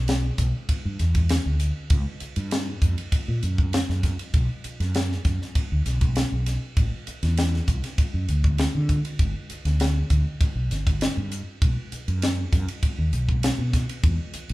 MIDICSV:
0, 0, Header, 1, 4, 480
1, 0, Start_track
1, 0, Tempo, 606673
1, 1506, Time_signature, 4, 2, 24, 8
1, 11498, End_track
2, 0, Start_track
2, 0, Title_t, "Fretless electric bass"
2, 0, Program_c, 0, 35
2, 0, Note_on_c, 0, 35, 74
2, 234, Note_off_c, 0, 35, 0
2, 305, Note_on_c, 0, 35, 92
2, 405, Note_off_c, 0, 35, 0
2, 675, Note_on_c, 0, 43, 70
2, 765, Note_off_c, 0, 43, 0
2, 787, Note_on_c, 0, 40, 80
2, 1079, Note_off_c, 0, 40, 0
2, 1154, Note_on_c, 0, 38, 66
2, 1345, Note_off_c, 0, 38, 0
2, 1506, Note_on_c, 0, 37, 98
2, 1606, Note_off_c, 0, 37, 0
2, 1872, Note_on_c, 0, 43, 86
2, 2158, Note_off_c, 0, 43, 0
2, 2229, Note_on_c, 0, 41, 85
2, 2329, Note_off_c, 0, 41, 0
2, 2597, Note_on_c, 0, 46, 73
2, 2689, Note_off_c, 0, 46, 0
2, 2715, Note_on_c, 0, 42, 81
2, 3006, Note_off_c, 0, 42, 0
2, 3079, Note_on_c, 0, 42, 79
2, 3270, Note_off_c, 0, 42, 0
2, 3432, Note_on_c, 0, 35, 97
2, 3532, Note_off_c, 0, 35, 0
2, 3797, Note_on_c, 0, 42, 79
2, 4083, Note_off_c, 0, 42, 0
2, 4152, Note_on_c, 0, 42, 85
2, 4252, Note_off_c, 0, 42, 0
2, 4524, Note_on_c, 0, 38, 70
2, 4615, Note_off_c, 0, 38, 0
2, 4636, Note_on_c, 0, 35, 77
2, 4928, Note_off_c, 0, 35, 0
2, 5002, Note_on_c, 0, 35, 80
2, 5193, Note_off_c, 0, 35, 0
2, 5355, Note_on_c, 0, 33, 87
2, 5455, Note_off_c, 0, 33, 0
2, 5718, Note_on_c, 0, 40, 86
2, 6004, Note_off_c, 0, 40, 0
2, 6076, Note_on_c, 0, 36, 83
2, 6175, Note_off_c, 0, 36, 0
2, 6440, Note_on_c, 0, 42, 69
2, 6533, Note_off_c, 0, 42, 0
2, 6556, Note_on_c, 0, 38, 77
2, 6848, Note_off_c, 0, 38, 0
2, 6922, Note_on_c, 0, 50, 73
2, 7114, Note_off_c, 0, 50, 0
2, 7273, Note_on_c, 0, 31, 88
2, 7373, Note_off_c, 0, 31, 0
2, 7635, Note_on_c, 0, 38, 83
2, 7921, Note_off_c, 0, 38, 0
2, 7994, Note_on_c, 0, 38, 85
2, 8094, Note_off_c, 0, 38, 0
2, 8350, Note_on_c, 0, 35, 69
2, 8446, Note_off_c, 0, 35, 0
2, 8470, Note_on_c, 0, 31, 78
2, 8763, Note_off_c, 0, 31, 0
2, 8837, Note_on_c, 0, 43, 78
2, 9029, Note_off_c, 0, 43, 0
2, 9193, Note_on_c, 0, 35, 82
2, 9292, Note_off_c, 0, 35, 0
2, 9557, Note_on_c, 0, 42, 82
2, 9840, Note_off_c, 0, 42, 0
2, 9911, Note_on_c, 0, 42, 94
2, 10010, Note_off_c, 0, 42, 0
2, 10274, Note_on_c, 0, 39, 71
2, 10366, Note_off_c, 0, 39, 0
2, 10387, Note_on_c, 0, 35, 76
2, 10679, Note_off_c, 0, 35, 0
2, 10747, Note_on_c, 0, 47, 74
2, 10941, Note_off_c, 0, 47, 0
2, 11104, Note_on_c, 0, 40, 93
2, 11204, Note_off_c, 0, 40, 0
2, 11473, Note_on_c, 0, 35, 89
2, 11498, Note_off_c, 0, 35, 0
2, 11498, End_track
3, 0, Start_track
3, 0, Title_t, "Muted fretless electric bass strokes"
3, 544, Note_on_c, 9, 29, 30
3, 623, Note_off_c, 9, 29, 0
3, 1750, Note_on_c, 9, 29, 33
3, 1829, Note_off_c, 9, 29, 0
3, 2469, Note_on_c, 9, 29, 31
3, 2548, Note_off_c, 9, 29, 0
3, 3676, Note_on_c, 9, 29, 31
3, 3755, Note_off_c, 9, 29, 0
3, 4394, Note_on_c, 9, 29, 33
3, 4473, Note_off_c, 9, 29, 0
3, 5598, Note_on_c, 9, 29, 31
3, 5678, Note_off_c, 9, 29, 0
3, 6313, Note_on_c, 9, 29, 29
3, 6393, Note_off_c, 9, 29, 0
3, 7515, Note_on_c, 9, 29, 33
3, 7594, Note_off_c, 9, 29, 0
3, 8234, Note_on_c, 9, 29, 30
3, 8313, Note_off_c, 9, 29, 0
3, 9435, Note_on_c, 9, 29, 32
3, 9514, Note_off_c, 9, 29, 0
3, 10149, Note_on_c, 9, 29, 32
3, 10229, Note_off_c, 9, 29, 0
3, 11349, Note_on_c, 9, 29, 32
3, 11428, Note_off_c, 9, 29, 0
3, 11498, End_track
4, 0, Start_track
4, 0, Title_t, "Drums"
4, 61, Note_on_c, 9, 51, 68
4, 71, Note_on_c, 9, 38, 105
4, 140, Note_off_c, 9, 51, 0
4, 150, Note_off_c, 9, 38, 0
4, 300, Note_on_c, 9, 44, 78
4, 300, Note_on_c, 9, 51, 56
4, 304, Note_on_c, 9, 36, 77
4, 380, Note_off_c, 9, 44, 0
4, 380, Note_off_c, 9, 51, 0
4, 383, Note_off_c, 9, 36, 0
4, 544, Note_on_c, 9, 36, 75
4, 544, Note_on_c, 9, 51, 77
4, 623, Note_off_c, 9, 36, 0
4, 623, Note_off_c, 9, 51, 0
4, 785, Note_on_c, 9, 44, 66
4, 785, Note_on_c, 9, 51, 51
4, 795, Note_on_c, 9, 38, 25
4, 864, Note_off_c, 9, 44, 0
4, 864, Note_off_c, 9, 51, 0
4, 874, Note_off_c, 9, 38, 0
4, 907, Note_on_c, 9, 51, 63
4, 909, Note_on_c, 9, 36, 77
4, 986, Note_off_c, 9, 51, 0
4, 988, Note_off_c, 9, 36, 0
4, 1023, Note_on_c, 9, 51, 79
4, 1033, Note_on_c, 9, 38, 94
4, 1102, Note_off_c, 9, 51, 0
4, 1112, Note_off_c, 9, 38, 0
4, 1263, Note_on_c, 9, 44, 73
4, 1263, Note_on_c, 9, 51, 59
4, 1342, Note_off_c, 9, 44, 0
4, 1342, Note_off_c, 9, 51, 0
4, 1502, Note_on_c, 9, 51, 80
4, 1506, Note_on_c, 9, 36, 96
4, 1582, Note_off_c, 9, 51, 0
4, 1586, Note_off_c, 9, 36, 0
4, 1743, Note_on_c, 9, 44, 78
4, 1743, Note_on_c, 9, 51, 55
4, 1822, Note_off_c, 9, 44, 0
4, 1822, Note_off_c, 9, 51, 0
4, 1867, Note_on_c, 9, 51, 61
4, 1947, Note_off_c, 9, 51, 0
4, 1988, Note_on_c, 9, 51, 80
4, 1997, Note_on_c, 9, 38, 100
4, 2067, Note_off_c, 9, 51, 0
4, 2076, Note_off_c, 9, 38, 0
4, 2229, Note_on_c, 9, 36, 79
4, 2230, Note_on_c, 9, 44, 81
4, 2230, Note_on_c, 9, 51, 59
4, 2308, Note_off_c, 9, 36, 0
4, 2309, Note_off_c, 9, 44, 0
4, 2309, Note_off_c, 9, 51, 0
4, 2356, Note_on_c, 9, 51, 63
4, 2435, Note_off_c, 9, 51, 0
4, 2470, Note_on_c, 9, 36, 76
4, 2470, Note_on_c, 9, 51, 83
4, 2549, Note_off_c, 9, 36, 0
4, 2549, Note_off_c, 9, 51, 0
4, 2711, Note_on_c, 9, 44, 66
4, 2711, Note_on_c, 9, 51, 53
4, 2790, Note_off_c, 9, 44, 0
4, 2790, Note_off_c, 9, 51, 0
4, 2836, Note_on_c, 9, 36, 79
4, 2915, Note_off_c, 9, 36, 0
4, 2951, Note_on_c, 9, 51, 73
4, 2961, Note_on_c, 9, 38, 107
4, 3030, Note_off_c, 9, 51, 0
4, 3040, Note_off_c, 9, 38, 0
4, 3085, Note_on_c, 9, 38, 30
4, 3164, Note_off_c, 9, 38, 0
4, 3191, Note_on_c, 9, 36, 70
4, 3192, Note_on_c, 9, 44, 74
4, 3192, Note_on_c, 9, 51, 59
4, 3201, Note_on_c, 9, 38, 31
4, 3270, Note_off_c, 9, 36, 0
4, 3271, Note_off_c, 9, 44, 0
4, 3271, Note_off_c, 9, 51, 0
4, 3280, Note_off_c, 9, 38, 0
4, 3317, Note_on_c, 9, 51, 54
4, 3396, Note_off_c, 9, 51, 0
4, 3432, Note_on_c, 9, 36, 93
4, 3433, Note_on_c, 9, 51, 65
4, 3511, Note_off_c, 9, 36, 0
4, 3513, Note_off_c, 9, 51, 0
4, 3672, Note_on_c, 9, 44, 73
4, 3672, Note_on_c, 9, 51, 57
4, 3751, Note_off_c, 9, 44, 0
4, 3751, Note_off_c, 9, 51, 0
4, 3800, Note_on_c, 9, 51, 51
4, 3809, Note_on_c, 9, 38, 30
4, 3879, Note_off_c, 9, 51, 0
4, 3888, Note_off_c, 9, 38, 0
4, 3912, Note_on_c, 9, 51, 69
4, 3922, Note_on_c, 9, 38, 99
4, 3991, Note_off_c, 9, 51, 0
4, 4001, Note_off_c, 9, 38, 0
4, 4051, Note_on_c, 9, 38, 27
4, 4130, Note_off_c, 9, 38, 0
4, 4150, Note_on_c, 9, 44, 75
4, 4150, Note_on_c, 9, 51, 51
4, 4153, Note_on_c, 9, 36, 78
4, 4160, Note_on_c, 9, 38, 27
4, 4229, Note_off_c, 9, 44, 0
4, 4229, Note_off_c, 9, 51, 0
4, 4232, Note_off_c, 9, 36, 0
4, 4239, Note_off_c, 9, 38, 0
4, 4287, Note_on_c, 9, 38, 32
4, 4367, Note_off_c, 9, 38, 0
4, 4393, Note_on_c, 9, 51, 73
4, 4394, Note_on_c, 9, 36, 78
4, 4472, Note_off_c, 9, 51, 0
4, 4473, Note_off_c, 9, 36, 0
4, 4634, Note_on_c, 9, 44, 72
4, 4634, Note_on_c, 9, 51, 57
4, 4643, Note_on_c, 9, 38, 28
4, 4713, Note_off_c, 9, 44, 0
4, 4713, Note_off_c, 9, 51, 0
4, 4722, Note_off_c, 9, 38, 0
4, 4755, Note_on_c, 9, 51, 57
4, 4757, Note_on_c, 9, 36, 81
4, 4834, Note_off_c, 9, 51, 0
4, 4837, Note_off_c, 9, 36, 0
4, 4870, Note_on_c, 9, 51, 69
4, 4879, Note_on_c, 9, 38, 98
4, 4949, Note_off_c, 9, 51, 0
4, 4958, Note_off_c, 9, 38, 0
4, 5113, Note_on_c, 9, 44, 76
4, 5113, Note_on_c, 9, 51, 62
4, 5123, Note_on_c, 9, 38, 29
4, 5192, Note_off_c, 9, 44, 0
4, 5192, Note_off_c, 9, 51, 0
4, 5202, Note_off_c, 9, 38, 0
4, 5354, Note_on_c, 9, 51, 76
4, 5355, Note_on_c, 9, 36, 94
4, 5433, Note_off_c, 9, 51, 0
4, 5434, Note_off_c, 9, 36, 0
4, 5593, Note_on_c, 9, 44, 69
4, 5593, Note_on_c, 9, 51, 58
4, 5672, Note_off_c, 9, 44, 0
4, 5672, Note_off_c, 9, 51, 0
4, 5718, Note_on_c, 9, 51, 57
4, 5728, Note_on_c, 9, 38, 31
4, 5798, Note_off_c, 9, 51, 0
4, 5807, Note_off_c, 9, 38, 0
4, 5834, Note_on_c, 9, 51, 80
4, 5844, Note_on_c, 9, 38, 90
4, 5914, Note_off_c, 9, 51, 0
4, 5923, Note_off_c, 9, 38, 0
4, 5968, Note_on_c, 9, 38, 28
4, 6048, Note_off_c, 9, 38, 0
4, 6075, Note_on_c, 9, 36, 75
4, 6075, Note_on_c, 9, 44, 75
4, 6075, Note_on_c, 9, 51, 59
4, 6154, Note_off_c, 9, 36, 0
4, 6154, Note_off_c, 9, 44, 0
4, 6154, Note_off_c, 9, 51, 0
4, 6200, Note_on_c, 9, 51, 62
4, 6210, Note_on_c, 9, 38, 29
4, 6280, Note_off_c, 9, 51, 0
4, 6289, Note_off_c, 9, 38, 0
4, 6315, Note_on_c, 9, 36, 84
4, 6315, Note_on_c, 9, 51, 72
4, 6394, Note_off_c, 9, 36, 0
4, 6394, Note_off_c, 9, 51, 0
4, 6555, Note_on_c, 9, 44, 69
4, 6555, Note_on_c, 9, 51, 57
4, 6634, Note_off_c, 9, 44, 0
4, 6634, Note_off_c, 9, 51, 0
4, 6679, Note_on_c, 9, 36, 85
4, 6758, Note_off_c, 9, 36, 0
4, 6791, Note_on_c, 9, 51, 74
4, 6800, Note_on_c, 9, 38, 96
4, 6870, Note_off_c, 9, 51, 0
4, 6879, Note_off_c, 9, 38, 0
4, 7033, Note_on_c, 9, 44, 72
4, 7033, Note_on_c, 9, 51, 51
4, 7034, Note_on_c, 9, 36, 70
4, 7112, Note_off_c, 9, 44, 0
4, 7112, Note_off_c, 9, 51, 0
4, 7113, Note_off_c, 9, 36, 0
4, 7158, Note_on_c, 9, 51, 57
4, 7237, Note_off_c, 9, 51, 0
4, 7272, Note_on_c, 9, 51, 70
4, 7273, Note_on_c, 9, 36, 93
4, 7351, Note_off_c, 9, 51, 0
4, 7352, Note_off_c, 9, 36, 0
4, 7513, Note_on_c, 9, 44, 75
4, 7513, Note_on_c, 9, 51, 56
4, 7593, Note_off_c, 9, 44, 0
4, 7593, Note_off_c, 9, 51, 0
4, 7637, Note_on_c, 9, 51, 56
4, 7647, Note_on_c, 9, 38, 30
4, 7716, Note_off_c, 9, 51, 0
4, 7726, Note_off_c, 9, 38, 0
4, 7752, Note_on_c, 9, 51, 72
4, 7761, Note_on_c, 9, 38, 102
4, 7831, Note_off_c, 9, 51, 0
4, 7841, Note_off_c, 9, 38, 0
4, 7991, Note_on_c, 9, 44, 73
4, 7991, Note_on_c, 9, 51, 54
4, 7993, Note_on_c, 9, 36, 78
4, 8070, Note_off_c, 9, 44, 0
4, 8070, Note_off_c, 9, 51, 0
4, 8072, Note_off_c, 9, 36, 0
4, 8233, Note_on_c, 9, 36, 86
4, 8234, Note_on_c, 9, 51, 72
4, 8312, Note_off_c, 9, 36, 0
4, 8313, Note_off_c, 9, 51, 0
4, 8473, Note_on_c, 9, 44, 74
4, 8473, Note_on_c, 9, 51, 49
4, 8483, Note_on_c, 9, 38, 29
4, 8553, Note_off_c, 9, 44, 0
4, 8553, Note_off_c, 9, 51, 0
4, 8562, Note_off_c, 9, 38, 0
4, 8598, Note_on_c, 9, 36, 82
4, 8599, Note_on_c, 9, 51, 60
4, 8677, Note_off_c, 9, 36, 0
4, 8678, Note_off_c, 9, 51, 0
4, 8711, Note_on_c, 9, 51, 74
4, 8720, Note_on_c, 9, 38, 96
4, 8790, Note_off_c, 9, 51, 0
4, 8799, Note_off_c, 9, 38, 0
4, 8953, Note_on_c, 9, 44, 77
4, 8953, Note_on_c, 9, 51, 52
4, 9032, Note_off_c, 9, 44, 0
4, 9032, Note_off_c, 9, 51, 0
4, 9192, Note_on_c, 9, 36, 103
4, 9193, Note_on_c, 9, 51, 69
4, 9271, Note_off_c, 9, 36, 0
4, 9272, Note_off_c, 9, 51, 0
4, 9431, Note_on_c, 9, 44, 77
4, 9431, Note_on_c, 9, 51, 54
4, 9510, Note_off_c, 9, 44, 0
4, 9510, Note_off_c, 9, 51, 0
4, 9558, Note_on_c, 9, 51, 59
4, 9637, Note_off_c, 9, 51, 0
4, 9671, Note_on_c, 9, 51, 82
4, 9680, Note_on_c, 9, 38, 94
4, 9750, Note_off_c, 9, 51, 0
4, 9759, Note_off_c, 9, 38, 0
4, 9910, Note_on_c, 9, 36, 82
4, 9912, Note_on_c, 9, 44, 80
4, 9912, Note_on_c, 9, 51, 62
4, 9921, Note_on_c, 9, 38, 30
4, 9990, Note_off_c, 9, 36, 0
4, 9991, Note_off_c, 9, 44, 0
4, 9991, Note_off_c, 9, 51, 0
4, 10000, Note_off_c, 9, 38, 0
4, 10036, Note_on_c, 9, 51, 67
4, 10115, Note_off_c, 9, 51, 0
4, 10149, Note_on_c, 9, 36, 81
4, 10149, Note_on_c, 9, 51, 79
4, 10228, Note_off_c, 9, 36, 0
4, 10228, Note_off_c, 9, 51, 0
4, 10386, Note_on_c, 9, 44, 79
4, 10386, Note_on_c, 9, 51, 51
4, 10465, Note_off_c, 9, 44, 0
4, 10465, Note_off_c, 9, 51, 0
4, 10512, Note_on_c, 9, 36, 74
4, 10591, Note_off_c, 9, 36, 0
4, 10626, Note_on_c, 9, 51, 83
4, 10636, Note_on_c, 9, 38, 101
4, 10705, Note_off_c, 9, 51, 0
4, 10715, Note_off_c, 9, 38, 0
4, 10867, Note_on_c, 9, 36, 75
4, 10867, Note_on_c, 9, 44, 81
4, 10867, Note_on_c, 9, 51, 57
4, 10877, Note_on_c, 9, 38, 30
4, 10946, Note_off_c, 9, 36, 0
4, 10946, Note_off_c, 9, 44, 0
4, 10946, Note_off_c, 9, 51, 0
4, 10956, Note_off_c, 9, 38, 0
4, 10992, Note_on_c, 9, 51, 63
4, 11071, Note_off_c, 9, 51, 0
4, 11104, Note_on_c, 9, 51, 76
4, 11105, Note_on_c, 9, 36, 99
4, 11183, Note_off_c, 9, 51, 0
4, 11184, Note_off_c, 9, 36, 0
4, 11342, Note_on_c, 9, 44, 79
4, 11342, Note_on_c, 9, 51, 60
4, 11421, Note_off_c, 9, 44, 0
4, 11421, Note_off_c, 9, 51, 0
4, 11467, Note_on_c, 9, 51, 55
4, 11498, Note_off_c, 9, 51, 0
4, 11498, End_track
0, 0, End_of_file